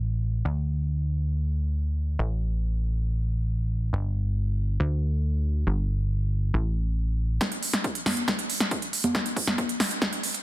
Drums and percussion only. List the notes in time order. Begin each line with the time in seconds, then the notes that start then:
7.41 kick, snare, closed hi-hat
7.52 closed hi-hat
7.63 open hi-hat
7.74 snare, closed hi-hat
7.84 kick, closed hi-hat
7.95 closed hi-hat
8.06 snare, open hi-hat, high conga
8.17 closed hi-hat
8.28 kick, snare, closed hi-hat
8.39 closed hi-hat
8.50 open hi-hat
8.60 snare, closed hi-hat
8.71 kick, closed hi-hat
8.82 closed hi-hat
8.93 open hi-hat
9.04 closed hi-hat, high conga
9.15 kick, snare, closed hi-hat
9.26 closed hi-hat
9.36 kick, open hi-hat
9.47 snare, closed hi-hat, high conga
9.58 kick, closed hi-hat
9.69 closed hi-hat
9.80 snare, open hi-hat
9.91 closed hi-hat
10.02 kick, snare, closed hi-hat
10.13 closed hi-hat
10.23 open hi-hat
10.34 closed hi-hat